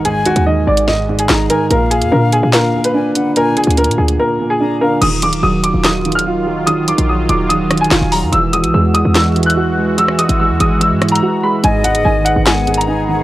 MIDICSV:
0, 0, Header, 1, 7, 480
1, 0, Start_track
1, 0, Key_signature, -6, "minor"
1, 0, Tempo, 413793
1, 59, Time_signature, 4, 2, 24, 8
1, 15350, End_track
2, 0, Start_track
2, 0, Title_t, "Upright piano"
2, 0, Program_c, 0, 0
2, 57, Note_on_c, 0, 68, 90
2, 247, Note_off_c, 0, 68, 0
2, 303, Note_on_c, 0, 66, 85
2, 491, Note_off_c, 0, 66, 0
2, 538, Note_on_c, 0, 75, 75
2, 728, Note_off_c, 0, 75, 0
2, 782, Note_on_c, 0, 74, 82
2, 970, Note_off_c, 0, 74, 0
2, 1021, Note_on_c, 0, 75, 80
2, 1358, Note_off_c, 0, 75, 0
2, 1384, Note_on_c, 0, 68, 77
2, 1720, Note_off_c, 0, 68, 0
2, 1739, Note_on_c, 0, 70, 85
2, 1929, Note_off_c, 0, 70, 0
2, 1980, Note_on_c, 0, 70, 83
2, 2169, Note_off_c, 0, 70, 0
2, 2210, Note_on_c, 0, 68, 86
2, 2403, Note_off_c, 0, 68, 0
2, 2455, Note_on_c, 0, 70, 78
2, 2646, Note_off_c, 0, 70, 0
2, 2699, Note_on_c, 0, 68, 88
2, 2889, Note_off_c, 0, 68, 0
2, 2944, Note_on_c, 0, 70, 84
2, 3280, Note_off_c, 0, 70, 0
2, 3302, Note_on_c, 0, 71, 78
2, 3865, Note_off_c, 0, 71, 0
2, 3907, Note_on_c, 0, 70, 93
2, 4094, Note_off_c, 0, 70, 0
2, 4141, Note_on_c, 0, 68, 82
2, 4330, Note_off_c, 0, 68, 0
2, 4381, Note_on_c, 0, 70, 78
2, 4570, Note_off_c, 0, 70, 0
2, 4616, Note_on_c, 0, 68, 74
2, 4807, Note_off_c, 0, 68, 0
2, 4866, Note_on_c, 0, 70, 82
2, 5201, Note_off_c, 0, 70, 0
2, 5221, Note_on_c, 0, 68, 85
2, 5558, Note_off_c, 0, 68, 0
2, 5582, Note_on_c, 0, 70, 82
2, 5770, Note_off_c, 0, 70, 0
2, 5816, Note_on_c, 0, 87, 97
2, 6007, Note_off_c, 0, 87, 0
2, 6067, Note_on_c, 0, 86, 93
2, 6253, Note_off_c, 0, 86, 0
2, 6298, Note_on_c, 0, 87, 84
2, 6488, Note_off_c, 0, 87, 0
2, 6536, Note_on_c, 0, 86, 82
2, 6727, Note_off_c, 0, 86, 0
2, 6780, Note_on_c, 0, 87, 79
2, 7118, Note_off_c, 0, 87, 0
2, 7137, Note_on_c, 0, 89, 81
2, 7702, Note_off_c, 0, 89, 0
2, 7732, Note_on_c, 0, 87, 94
2, 7924, Note_off_c, 0, 87, 0
2, 7984, Note_on_c, 0, 86, 79
2, 8172, Note_off_c, 0, 86, 0
2, 8225, Note_on_c, 0, 87, 70
2, 8412, Note_off_c, 0, 87, 0
2, 8458, Note_on_c, 0, 86, 83
2, 8648, Note_off_c, 0, 86, 0
2, 8692, Note_on_c, 0, 87, 92
2, 9034, Note_off_c, 0, 87, 0
2, 9058, Note_on_c, 0, 80, 86
2, 9397, Note_off_c, 0, 80, 0
2, 9416, Note_on_c, 0, 82, 85
2, 9607, Note_off_c, 0, 82, 0
2, 9656, Note_on_c, 0, 88, 94
2, 9847, Note_off_c, 0, 88, 0
2, 9895, Note_on_c, 0, 87, 84
2, 10086, Note_off_c, 0, 87, 0
2, 10140, Note_on_c, 0, 88, 82
2, 10329, Note_off_c, 0, 88, 0
2, 10373, Note_on_c, 0, 87, 89
2, 10565, Note_off_c, 0, 87, 0
2, 10619, Note_on_c, 0, 88, 87
2, 10957, Note_off_c, 0, 88, 0
2, 10975, Note_on_c, 0, 90, 86
2, 11541, Note_off_c, 0, 90, 0
2, 11577, Note_on_c, 0, 88, 97
2, 11767, Note_off_c, 0, 88, 0
2, 11817, Note_on_c, 0, 87, 85
2, 12007, Note_off_c, 0, 87, 0
2, 12061, Note_on_c, 0, 88, 73
2, 12250, Note_off_c, 0, 88, 0
2, 12300, Note_on_c, 0, 87, 82
2, 12489, Note_off_c, 0, 87, 0
2, 12536, Note_on_c, 0, 88, 93
2, 12876, Note_off_c, 0, 88, 0
2, 12894, Note_on_c, 0, 82, 88
2, 13235, Note_off_c, 0, 82, 0
2, 13264, Note_on_c, 0, 83, 85
2, 13451, Note_off_c, 0, 83, 0
2, 13501, Note_on_c, 0, 80, 93
2, 13690, Note_off_c, 0, 80, 0
2, 13736, Note_on_c, 0, 78, 83
2, 13927, Note_off_c, 0, 78, 0
2, 13973, Note_on_c, 0, 80, 84
2, 14165, Note_off_c, 0, 80, 0
2, 14208, Note_on_c, 0, 78, 87
2, 14402, Note_off_c, 0, 78, 0
2, 14460, Note_on_c, 0, 80, 81
2, 14798, Note_off_c, 0, 80, 0
2, 14818, Note_on_c, 0, 82, 83
2, 15350, Note_off_c, 0, 82, 0
2, 15350, End_track
3, 0, Start_track
3, 0, Title_t, "Flute"
3, 0, Program_c, 1, 73
3, 53, Note_on_c, 1, 80, 114
3, 507, Note_off_c, 1, 80, 0
3, 1503, Note_on_c, 1, 82, 85
3, 1729, Note_off_c, 1, 82, 0
3, 1737, Note_on_c, 1, 80, 90
3, 1966, Note_off_c, 1, 80, 0
3, 1983, Note_on_c, 1, 77, 99
3, 2894, Note_off_c, 1, 77, 0
3, 2932, Note_on_c, 1, 77, 98
3, 3386, Note_off_c, 1, 77, 0
3, 3421, Note_on_c, 1, 80, 76
3, 3648, Note_off_c, 1, 80, 0
3, 3657, Note_on_c, 1, 78, 84
3, 3886, Note_off_c, 1, 78, 0
3, 3898, Note_on_c, 1, 80, 106
3, 4349, Note_off_c, 1, 80, 0
3, 5340, Note_on_c, 1, 82, 80
3, 5568, Note_off_c, 1, 82, 0
3, 5583, Note_on_c, 1, 77, 82
3, 5809, Note_off_c, 1, 77, 0
3, 13501, Note_on_c, 1, 75, 121
3, 14413, Note_off_c, 1, 75, 0
3, 14456, Note_on_c, 1, 78, 96
3, 14909, Note_off_c, 1, 78, 0
3, 14937, Note_on_c, 1, 80, 82
3, 15161, Note_off_c, 1, 80, 0
3, 15168, Note_on_c, 1, 78, 82
3, 15350, Note_off_c, 1, 78, 0
3, 15350, End_track
4, 0, Start_track
4, 0, Title_t, "Analog synth pad"
4, 0, Program_c, 2, 89
4, 5819, Note_on_c, 2, 54, 80
4, 5820, Note_on_c, 2, 51, 84
4, 5820, Note_on_c, 2, 65, 94
4, 9621, Note_off_c, 2, 51, 0
4, 9621, Note_off_c, 2, 54, 0
4, 9621, Note_off_c, 2, 65, 0
4, 9658, Note_on_c, 2, 56, 80
4, 9658, Note_on_c, 2, 66, 94
4, 9659, Note_on_c, 2, 52, 87
4, 13460, Note_off_c, 2, 52, 0
4, 13460, Note_off_c, 2, 56, 0
4, 13460, Note_off_c, 2, 66, 0
4, 13499, Note_on_c, 2, 68, 95
4, 13500, Note_on_c, 2, 51, 83
4, 13500, Note_on_c, 2, 59, 78
4, 15350, Note_off_c, 2, 51, 0
4, 15350, Note_off_c, 2, 59, 0
4, 15350, Note_off_c, 2, 68, 0
4, 15350, End_track
5, 0, Start_track
5, 0, Title_t, "Grand piano"
5, 0, Program_c, 3, 0
5, 0, Control_c, 3, 64, 127
5, 0, Note_on_c, 3, 44, 77
5, 0, Note_on_c, 3, 51, 79
5, 0, Note_on_c, 3, 63, 98
5, 60, Note_off_c, 3, 44, 0
5, 60, Note_on_c, 3, 44, 92
5, 283, Note_off_c, 3, 44, 0
5, 301, Note_on_c, 3, 44, 74
5, 524, Note_off_c, 3, 51, 0
5, 541, Note_on_c, 3, 51, 85
5, 778, Note_off_c, 3, 63, 0
5, 996, Note_off_c, 3, 44, 0
5, 1014, Note_on_c, 3, 44, 78
5, 1242, Note_off_c, 3, 44, 0
5, 1259, Note_on_c, 3, 44, 79
5, 1500, Note_on_c, 3, 63, 108
5, 1723, Note_off_c, 3, 51, 0
5, 1741, Note_on_c, 3, 51, 74
5, 1979, Note_off_c, 3, 44, 0
5, 1979, Note_off_c, 3, 63, 0
5, 1980, Note_off_c, 3, 51, 0
5, 1981, Note_on_c, 3, 46, 94
5, 1996, Control_c, 3, 64, 0
5, 2171, Control_c, 3, 64, 127
5, 2202, Note_off_c, 3, 46, 0
5, 2220, Note_on_c, 3, 46, 70
5, 2456, Note_on_c, 3, 50, 82
5, 2925, Note_off_c, 3, 46, 0
5, 2942, Note_on_c, 3, 46, 72
5, 3163, Note_off_c, 3, 46, 0
5, 3180, Note_on_c, 3, 46, 73
5, 3411, Note_on_c, 3, 62, 105
5, 3643, Note_off_c, 3, 50, 0
5, 3660, Note_on_c, 3, 50, 71
5, 3879, Note_off_c, 3, 46, 0
5, 3896, Note_on_c, 3, 46, 88
5, 4121, Note_off_c, 3, 46, 0
5, 4138, Note_on_c, 3, 46, 78
5, 4356, Note_off_c, 3, 50, 0
5, 4373, Note_on_c, 3, 50, 76
5, 4615, Note_off_c, 3, 62, 0
5, 4850, Note_off_c, 3, 46, 0
5, 4868, Note_on_c, 3, 46, 75
5, 5083, Note_off_c, 3, 46, 0
5, 5100, Note_on_c, 3, 46, 77
5, 5339, Note_on_c, 3, 62, 99
5, 5562, Note_off_c, 3, 50, 0
5, 5580, Note_on_c, 3, 50, 80
5, 5819, Note_off_c, 3, 46, 0
5, 5819, Note_off_c, 3, 50, 0
5, 5819, Note_off_c, 3, 62, 0
5, 5823, Note_on_c, 3, 51, 94
5, 5835, Control_c, 3, 64, 0
5, 6046, Note_off_c, 3, 51, 0
5, 6049, Control_c, 3, 64, 127
5, 6064, Note_on_c, 3, 51, 77
5, 6291, Note_on_c, 3, 54, 82
5, 6760, Note_off_c, 3, 51, 0
5, 6777, Note_on_c, 3, 51, 77
5, 7004, Note_off_c, 3, 51, 0
5, 7022, Note_on_c, 3, 51, 79
5, 7262, Note_on_c, 3, 65, 103
5, 7482, Note_off_c, 3, 54, 0
5, 7499, Note_on_c, 3, 54, 80
5, 7719, Note_off_c, 3, 51, 0
5, 7736, Note_on_c, 3, 51, 95
5, 7969, Note_off_c, 3, 51, 0
5, 7986, Note_on_c, 3, 51, 71
5, 8203, Note_off_c, 3, 54, 0
5, 8220, Note_on_c, 3, 54, 77
5, 8461, Note_off_c, 3, 65, 0
5, 8681, Note_off_c, 3, 51, 0
5, 8698, Note_on_c, 3, 51, 76
5, 8925, Note_off_c, 3, 51, 0
5, 8943, Note_on_c, 3, 51, 79
5, 9182, Note_on_c, 3, 65, 105
5, 9408, Note_off_c, 3, 54, 0
5, 9425, Note_on_c, 3, 54, 79
5, 9660, Note_off_c, 3, 65, 0
5, 9661, Note_off_c, 3, 51, 0
5, 9662, Note_off_c, 3, 54, 0
5, 9662, Note_on_c, 3, 52, 90
5, 9676, Control_c, 3, 64, 0
5, 9878, Control_c, 3, 64, 127
5, 9886, Note_off_c, 3, 52, 0
5, 9903, Note_on_c, 3, 52, 77
5, 10141, Note_on_c, 3, 56, 83
5, 10596, Note_off_c, 3, 52, 0
5, 10613, Note_on_c, 3, 52, 84
5, 10842, Note_off_c, 3, 52, 0
5, 10859, Note_on_c, 3, 52, 90
5, 11097, Note_on_c, 3, 66, 102
5, 11321, Note_off_c, 3, 56, 0
5, 11338, Note_on_c, 3, 56, 76
5, 11564, Note_off_c, 3, 52, 0
5, 11581, Note_on_c, 3, 52, 98
5, 11795, Note_off_c, 3, 52, 0
5, 11812, Note_on_c, 3, 52, 72
5, 12042, Note_off_c, 3, 56, 0
5, 12059, Note_on_c, 3, 56, 74
5, 12298, Note_off_c, 3, 66, 0
5, 12518, Note_off_c, 3, 52, 0
5, 12536, Note_on_c, 3, 52, 77
5, 12757, Note_off_c, 3, 52, 0
5, 12775, Note_on_c, 3, 52, 78
5, 13021, Note_on_c, 3, 66, 103
5, 13241, Note_off_c, 3, 56, 0
5, 13258, Note_on_c, 3, 56, 80
5, 13497, Note_off_c, 3, 52, 0
5, 13499, Note_off_c, 3, 56, 0
5, 13500, Note_off_c, 3, 66, 0
5, 13500, Note_on_c, 3, 44, 95
5, 13515, Control_c, 3, 64, 0
5, 13695, Control_c, 3, 64, 127
5, 13725, Note_off_c, 3, 44, 0
5, 13743, Note_on_c, 3, 44, 78
5, 13976, Note_on_c, 3, 51, 82
5, 14443, Note_off_c, 3, 44, 0
5, 14461, Note_on_c, 3, 44, 74
5, 14681, Note_off_c, 3, 44, 0
5, 14699, Note_on_c, 3, 44, 80
5, 14938, Note_on_c, 3, 63, 102
5, 15159, Note_off_c, 3, 51, 0
5, 15176, Note_on_c, 3, 51, 76
5, 15350, Note_off_c, 3, 44, 0
5, 15350, Note_off_c, 3, 51, 0
5, 15350, Note_off_c, 3, 63, 0
5, 15350, End_track
6, 0, Start_track
6, 0, Title_t, "808-style bass"
6, 0, Program_c, 4, 38
6, 0, Note_on_c, 4, 32, 100
6, 371, Note_off_c, 4, 32, 0
6, 418, Note_on_c, 4, 39, 101
6, 764, Note_off_c, 4, 39, 0
6, 778, Note_on_c, 4, 32, 108
6, 1469, Note_off_c, 4, 32, 0
6, 1498, Note_on_c, 4, 32, 106
6, 1729, Note_off_c, 4, 32, 0
6, 1978, Note_on_c, 4, 34, 108
6, 2339, Note_on_c, 4, 41, 101
6, 2357, Note_off_c, 4, 34, 0
6, 2453, Note_off_c, 4, 41, 0
6, 2461, Note_on_c, 4, 46, 104
6, 2805, Note_off_c, 4, 46, 0
6, 2820, Note_on_c, 4, 46, 101
6, 4213, Note_off_c, 4, 46, 0
6, 4258, Note_on_c, 4, 38, 106
6, 4498, Note_on_c, 4, 46, 98
6, 4516, Note_off_c, 4, 38, 0
6, 4613, Note_off_c, 4, 46, 0
6, 4618, Note_on_c, 4, 38, 107
6, 4849, Note_off_c, 4, 38, 0
6, 5819, Note_on_c, 4, 27, 108
6, 6179, Note_on_c, 4, 26, 96
6, 6196, Note_off_c, 4, 27, 0
6, 6293, Note_off_c, 4, 26, 0
6, 6299, Note_on_c, 4, 27, 106
6, 6644, Note_off_c, 4, 27, 0
6, 6659, Note_on_c, 4, 27, 101
6, 8053, Note_off_c, 4, 27, 0
6, 8098, Note_on_c, 4, 34, 103
6, 8444, Note_off_c, 4, 34, 0
6, 8458, Note_on_c, 4, 27, 104
6, 9150, Note_off_c, 4, 27, 0
6, 9180, Note_on_c, 4, 27, 108
6, 9292, Note_off_c, 4, 27, 0
6, 9299, Note_on_c, 4, 27, 107
6, 9539, Note_on_c, 4, 42, 98
6, 9557, Note_off_c, 4, 27, 0
6, 9653, Note_off_c, 4, 42, 0
6, 9661, Note_on_c, 4, 28, 112
6, 10020, Note_on_c, 4, 35, 103
6, 10037, Note_off_c, 4, 28, 0
6, 10133, Note_off_c, 4, 35, 0
6, 10140, Note_on_c, 4, 40, 103
6, 10485, Note_off_c, 4, 40, 0
6, 10499, Note_on_c, 4, 40, 104
6, 11893, Note_off_c, 4, 40, 0
6, 11938, Note_on_c, 4, 32, 109
6, 12178, Note_on_c, 4, 40, 106
6, 12196, Note_off_c, 4, 32, 0
6, 12293, Note_off_c, 4, 40, 0
6, 12300, Note_on_c, 4, 32, 109
6, 12659, Note_on_c, 4, 44, 101
6, 12677, Note_off_c, 4, 32, 0
6, 13001, Note_off_c, 4, 44, 0
6, 13500, Note_on_c, 4, 32, 113
6, 13859, Note_on_c, 4, 30, 101
6, 13877, Note_off_c, 4, 32, 0
6, 13973, Note_off_c, 4, 30, 0
6, 13981, Note_on_c, 4, 32, 103
6, 14325, Note_off_c, 4, 32, 0
6, 14340, Note_on_c, 4, 32, 104
6, 15350, Note_off_c, 4, 32, 0
6, 15350, End_track
7, 0, Start_track
7, 0, Title_t, "Drums"
7, 58, Note_on_c, 9, 42, 83
7, 174, Note_off_c, 9, 42, 0
7, 296, Note_on_c, 9, 42, 83
7, 412, Note_off_c, 9, 42, 0
7, 417, Note_on_c, 9, 42, 77
7, 533, Note_off_c, 9, 42, 0
7, 896, Note_on_c, 9, 42, 83
7, 1012, Note_off_c, 9, 42, 0
7, 1018, Note_on_c, 9, 38, 68
7, 1134, Note_off_c, 9, 38, 0
7, 1377, Note_on_c, 9, 42, 86
7, 1493, Note_off_c, 9, 42, 0
7, 1498, Note_on_c, 9, 38, 109
7, 1498, Note_on_c, 9, 39, 93
7, 1614, Note_off_c, 9, 38, 0
7, 1614, Note_off_c, 9, 39, 0
7, 1738, Note_on_c, 9, 42, 85
7, 1854, Note_off_c, 9, 42, 0
7, 1978, Note_on_c, 9, 42, 83
7, 2094, Note_off_c, 9, 42, 0
7, 2217, Note_on_c, 9, 42, 90
7, 2333, Note_off_c, 9, 42, 0
7, 2338, Note_on_c, 9, 42, 77
7, 2454, Note_off_c, 9, 42, 0
7, 2697, Note_on_c, 9, 42, 76
7, 2813, Note_off_c, 9, 42, 0
7, 2937, Note_on_c, 9, 38, 116
7, 2937, Note_on_c, 9, 39, 92
7, 2939, Note_on_c, 9, 42, 79
7, 3053, Note_off_c, 9, 38, 0
7, 3053, Note_off_c, 9, 39, 0
7, 3055, Note_off_c, 9, 42, 0
7, 3297, Note_on_c, 9, 42, 83
7, 3413, Note_off_c, 9, 42, 0
7, 3658, Note_on_c, 9, 42, 85
7, 3774, Note_off_c, 9, 42, 0
7, 3898, Note_on_c, 9, 42, 80
7, 4014, Note_off_c, 9, 42, 0
7, 4138, Note_on_c, 9, 42, 71
7, 4218, Note_off_c, 9, 42, 0
7, 4218, Note_on_c, 9, 42, 70
7, 4298, Note_off_c, 9, 42, 0
7, 4298, Note_on_c, 9, 42, 72
7, 4377, Note_off_c, 9, 42, 0
7, 4377, Note_on_c, 9, 42, 70
7, 4458, Note_off_c, 9, 42, 0
7, 4458, Note_on_c, 9, 42, 72
7, 4538, Note_off_c, 9, 42, 0
7, 4538, Note_on_c, 9, 42, 66
7, 4654, Note_off_c, 9, 42, 0
7, 4736, Note_on_c, 9, 42, 83
7, 4852, Note_off_c, 9, 42, 0
7, 5819, Note_on_c, 9, 42, 88
7, 5819, Note_on_c, 9, 49, 107
7, 5935, Note_off_c, 9, 42, 0
7, 5935, Note_off_c, 9, 49, 0
7, 6058, Note_on_c, 9, 42, 92
7, 6174, Note_off_c, 9, 42, 0
7, 6179, Note_on_c, 9, 42, 81
7, 6295, Note_off_c, 9, 42, 0
7, 6538, Note_on_c, 9, 42, 85
7, 6654, Note_off_c, 9, 42, 0
7, 6779, Note_on_c, 9, 38, 119
7, 6779, Note_on_c, 9, 39, 93
7, 6781, Note_on_c, 9, 42, 79
7, 6895, Note_off_c, 9, 38, 0
7, 6895, Note_off_c, 9, 39, 0
7, 6897, Note_off_c, 9, 42, 0
7, 7019, Note_on_c, 9, 42, 44
7, 7099, Note_off_c, 9, 42, 0
7, 7099, Note_on_c, 9, 42, 60
7, 7178, Note_off_c, 9, 42, 0
7, 7178, Note_on_c, 9, 42, 78
7, 7294, Note_off_c, 9, 42, 0
7, 7739, Note_on_c, 9, 42, 86
7, 7855, Note_off_c, 9, 42, 0
7, 7978, Note_on_c, 9, 42, 93
7, 8094, Note_off_c, 9, 42, 0
7, 8100, Note_on_c, 9, 42, 77
7, 8216, Note_off_c, 9, 42, 0
7, 8458, Note_on_c, 9, 42, 82
7, 8574, Note_off_c, 9, 42, 0
7, 8701, Note_on_c, 9, 42, 81
7, 8817, Note_off_c, 9, 42, 0
7, 8939, Note_on_c, 9, 37, 100
7, 8939, Note_on_c, 9, 42, 70
7, 9019, Note_off_c, 9, 42, 0
7, 9019, Note_on_c, 9, 42, 57
7, 9055, Note_off_c, 9, 37, 0
7, 9099, Note_off_c, 9, 42, 0
7, 9099, Note_on_c, 9, 42, 43
7, 9179, Note_on_c, 9, 38, 117
7, 9179, Note_on_c, 9, 39, 93
7, 9215, Note_off_c, 9, 42, 0
7, 9295, Note_off_c, 9, 38, 0
7, 9295, Note_off_c, 9, 39, 0
7, 9419, Note_on_c, 9, 46, 61
7, 9535, Note_off_c, 9, 46, 0
7, 9659, Note_on_c, 9, 42, 84
7, 9775, Note_off_c, 9, 42, 0
7, 9897, Note_on_c, 9, 42, 94
7, 10013, Note_off_c, 9, 42, 0
7, 10019, Note_on_c, 9, 42, 78
7, 10135, Note_off_c, 9, 42, 0
7, 10377, Note_on_c, 9, 42, 81
7, 10493, Note_off_c, 9, 42, 0
7, 10618, Note_on_c, 9, 38, 115
7, 10618, Note_on_c, 9, 39, 91
7, 10620, Note_on_c, 9, 42, 81
7, 10734, Note_off_c, 9, 38, 0
7, 10734, Note_off_c, 9, 39, 0
7, 10736, Note_off_c, 9, 42, 0
7, 10858, Note_on_c, 9, 42, 45
7, 10939, Note_off_c, 9, 42, 0
7, 10939, Note_on_c, 9, 42, 62
7, 11018, Note_off_c, 9, 42, 0
7, 11018, Note_on_c, 9, 42, 75
7, 11134, Note_off_c, 9, 42, 0
7, 11578, Note_on_c, 9, 42, 87
7, 11694, Note_off_c, 9, 42, 0
7, 11698, Note_on_c, 9, 37, 72
7, 11814, Note_off_c, 9, 37, 0
7, 11818, Note_on_c, 9, 42, 93
7, 11934, Note_off_c, 9, 42, 0
7, 11939, Note_on_c, 9, 42, 77
7, 12055, Note_off_c, 9, 42, 0
7, 12298, Note_on_c, 9, 42, 83
7, 12414, Note_off_c, 9, 42, 0
7, 12541, Note_on_c, 9, 42, 82
7, 12657, Note_off_c, 9, 42, 0
7, 12779, Note_on_c, 9, 37, 95
7, 12779, Note_on_c, 9, 42, 44
7, 12859, Note_off_c, 9, 42, 0
7, 12859, Note_on_c, 9, 42, 61
7, 12895, Note_off_c, 9, 37, 0
7, 12939, Note_off_c, 9, 42, 0
7, 12939, Note_on_c, 9, 42, 75
7, 13055, Note_off_c, 9, 42, 0
7, 13499, Note_on_c, 9, 42, 85
7, 13615, Note_off_c, 9, 42, 0
7, 13738, Note_on_c, 9, 42, 90
7, 13854, Note_off_c, 9, 42, 0
7, 13860, Note_on_c, 9, 42, 79
7, 13976, Note_off_c, 9, 42, 0
7, 14218, Note_on_c, 9, 42, 84
7, 14334, Note_off_c, 9, 42, 0
7, 14459, Note_on_c, 9, 38, 117
7, 14459, Note_on_c, 9, 39, 92
7, 14461, Note_on_c, 9, 42, 83
7, 14575, Note_off_c, 9, 38, 0
7, 14575, Note_off_c, 9, 39, 0
7, 14577, Note_off_c, 9, 42, 0
7, 14700, Note_on_c, 9, 42, 45
7, 14780, Note_off_c, 9, 42, 0
7, 14780, Note_on_c, 9, 42, 61
7, 14859, Note_off_c, 9, 42, 0
7, 14859, Note_on_c, 9, 42, 75
7, 14975, Note_off_c, 9, 42, 0
7, 15350, End_track
0, 0, End_of_file